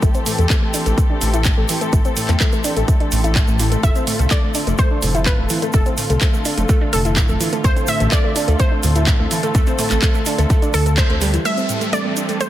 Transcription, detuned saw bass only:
0.02 A1
0.38 E2
0.86 A1
1.22 A1
1.57 A1
1.93 A1
2.29 E2
2.76 A1
3.12 A1
3.48 A1
3.83 F1
4.19 C2
4.67 F1
5.02 F1
5.38 F1
5.74 F1
6.10 C2
6.57 F1
6.93 F1
7.29 F1
7.64 D2
8.00 A1
8.48 D2
8.83 D2
9.19 D2
9.55 D2
9.91 A1
10.38 D2
10.74 D2
11.10 D2

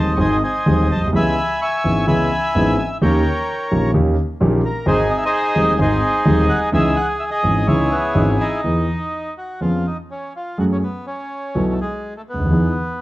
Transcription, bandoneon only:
Already playing: C5 D#5 A5
0.16 C#6
0.20 D#5 G#5 C6
0.32 G#5
0.44 C5 D#5 G#5
0.92 A5
1.16 E5 G#5 B5
1.62 E5 G#5 C#6
2.08 E5 G#5 B5
2.79 G#5
3.02 A#4 C#5 G5
4.65 A#4
4.87 D#4 G#4 C5
5.10 D#5
5.17 E5
5.26 G#4 C5 D#5
5.81 D#4 G#4 C5
6.49 F#5
6.74 G#4 E5
6.96 F#5
7.19 E5
7.31 G#4 D#5
7.67 E4 G#4 C#5
7.91 B3
8.27 C#4
8.41 D#4
9.38 F#4
9.61 F4
9.86 D#4
10.11 C#4
10.36 F4
10.59 F#4
10.72 C#4
10.83 B3
11.07 C#4
11.73 A3
11.81 G#3
12.17 A3
12.29 B3

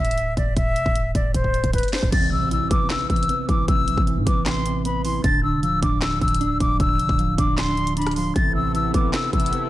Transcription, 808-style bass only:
0.00 D1
0.37 D1
0.57 D1
0.76 F1
0.86 D1
1.15 D1
1.34 D1
1.64 D1
2.03 C1
2.12 A1
2.71 A1
3.10 A1
3.49 A1
3.68 A1
3.88 B1
3.97 A1
4.17 A2
4.27 A1
5.24 D1
5.53 F1
5.68 D1
5.82 D1
6.21 D1
6.60 D1
6.80 D1
6.99 F1
7.09 D1
7.38 D1
8.36 A1
8.94 A1
9.33 A1

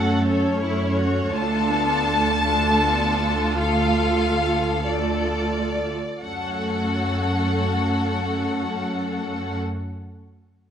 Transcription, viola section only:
Already playing: A3 C#4
0.25 C#4
1.34 A3 D4
1.71 B3
2.07 A3
2.45 A3 D4
2.82 B3
3.21 A3
3.61 F4
4.86 A3 F4
6.24 A3 C#4

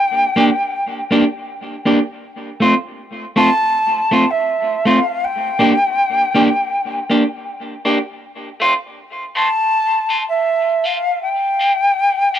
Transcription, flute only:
Already playing: G5
3.37 A5
4.31 E5
4.86 F5
5.24 G5
9.36 A5
10.29 E5
10.85 F5
11.22 G5

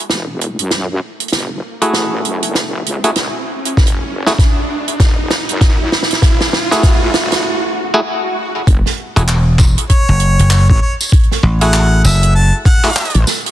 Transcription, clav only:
1.82 A3 E4 F#4 G#4
3.04 A3 E4 F#4 G#4
4.26 A3 E4 F#4 G#4
6.71 A3 E4 F#4 G#4
7.94 A3 E4 F#4 G#4
9.16 A3 E4 F#4 G#4
11.61 A3 E4 F#4 G#4
12.84 A3 E4 F#4 G#4

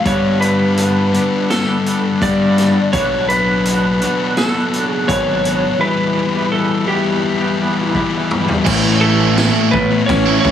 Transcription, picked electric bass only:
0.05 G2
2.22 G2
2.94 B1
5.09 G#1
8.66 A1
9.74 A1
10.09 A1
10.45 A1

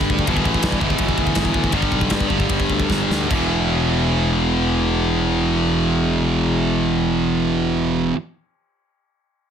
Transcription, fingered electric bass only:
0.10 D2
0.28 G1
0.45 A1
0.63 G2
0.81 G1
1.00 G1
1.18 D2
1.36 G1
1.55 D2
1.73 G1
1.92 B1
2.11 G2
2.30 G1
2.50 G1
2.70 D2
2.90 G1
3.10 D2
3.31 E1

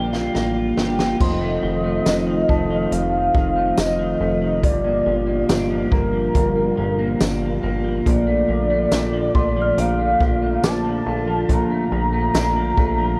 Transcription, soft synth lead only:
1.22 D#5
2.93 F5
3.79 D#5
4.64 D5
5.92 A#4
8.08 D5
9.80 F5
10.67 A5
11.52 A#5

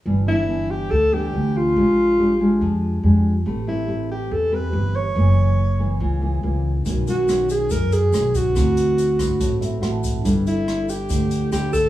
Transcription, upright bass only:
0.06 G1
0.91 D2
1.34 D2
1.76 A#1
2.61 F2
3.03 F2
3.46 A1
4.31 E2
4.73 G1
5.16 F#1
6.00 C#2
6.43 C#2
6.86 B1
7.71 F#2
8.12 B1
8.56 D2
9.40 A1
9.82 A1
10.25 G1
11.10 D2
11.52 D2

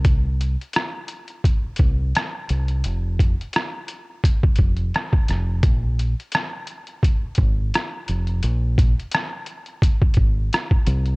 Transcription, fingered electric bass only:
Already playing: C2
1.80 C2
2.50 C2
2.85 F1
4.59 F1
5.29 F1
5.64 A#1
7.38 G#1
8.09 F1
8.44 A#1
10.17 G#1
10.87 C2

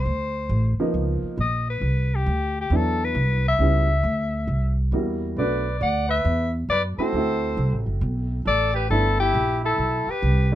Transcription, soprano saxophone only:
Already playing: C5
1.41 D#5
1.70 B4
2.15 G4
2.61 G4
2.75 A4
3.05 B4
3.48 E5
5.39 D5
5.82 F#5
6.10 E5
6.70 D5
6.99 C5
8.48 D5
8.76 B4
8.90 A4
9.20 G4
9.65 A4
10.11 B4

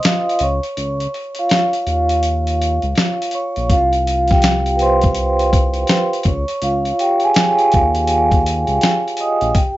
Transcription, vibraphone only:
Already playing: D#5 D#6
0.05 F4 F5
0.43 C#5 C#6
1.39 F4 F5
1.88 F4 F5
3.34 C#5 C#6
3.72 F4 F5
4.31 G4 G5
4.76 B4
4.81 C5 C6
6.26 C#5 C#6
6.63 F4 F5
7.00 G4 G5
7.24 G#4 G#5
7.74 F4 F5
9.20 D#5 D#6
9.56 G4 G5

